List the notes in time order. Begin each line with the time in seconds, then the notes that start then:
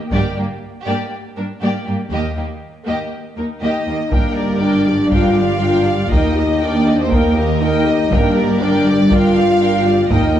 0.11 G1 G2 A#3 G4 D5, taiko
0.36 G2 A#3 G4
0.86 G2 A#3 G4 D5
1.37 G2 A#3 D4 A#4
1.62 G2 A#3 G4 D5
1.87 G2 A#3 G4
2.11 D#2 A#3 G4 D#5
2.36 D#2 A#3 G4
2.85 D#2 A#3 G4 D#5
3.37 D#2 A#3 D#4 A#4
3.61 D#2 A#3 D#4 G4 D#5
3.86 D#2 A#3 G4
4.11 G1 G2 A#3 D4 A#4 G5, taiko
4.35 G4 D5
4.60 D4 A#4 D5 G5
4.86 G4 D5
5.10 D4 F4 A#4 F5 G5, taiko
5.36 G4 D5
5.62 D4 A#4 G5
5.85 G4 D5
6.12 D#2 D#4 A#4 D#5 G5, taiko
6.35 G4 D#5
6.61 D4 D#4 A#4 D5 G5
6.86 G4 D#5
7.00 C4 C5
7.10 A#3 D#4 A#4 G5, taiko
7.35 G4 D#5
7.62 D#4 A#4 D#5 G5
7.86 G4 D#5
8.11 G1 G2 A#3 D4 A#4 G5, taiko
8.36 G4 D5
8.60 D4 A#4 D5 G5
8.87 G4 D5
9.10 D4 F4 A#4 F5 G5, taiko
9.36 G4 D5
9.60 D4 A#4 G5
9.86 G4 D5
10.10 D#2 D#4 A#4 D#5 G5, taiko
10.36 G4 D#5